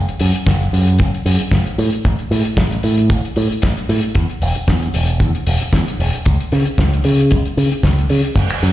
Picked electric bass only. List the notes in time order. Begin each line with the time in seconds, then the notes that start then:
0.21 F#2
0.35 muted picked electric bass stroke
0.47 F#1
0.73 F#2
1.00 F#1
1.26 F#2
1.40 muted picked electric bass stroke
1.51 F#1
1.78 A2
2.05 A1
2.31 A2
2.46 muted picked electric bass stroke
2.57 A1
2.84 A2
3.10 A1
3.37 A2
3.51 muted picked electric bass stroke
3.63 A1
3.89 A2
4.15 E2
4.42 E1
4.56 muted picked electric bass stroke
4.68 E2
4.94 E1
5.20 E2
5.47 E1
5.62 muted picked electric bass stroke
5.73 E2
6.00 E1
6.26 C#2
6.52 C#3
6.67 muted picked electric bass stroke
6.78 C#2
7.05 C#3
7.32 C#2
7.57 C#3
7.72 muted picked electric bass stroke
7.83 C#2
8.10 C#3
8.36 F#1
8.63 F#2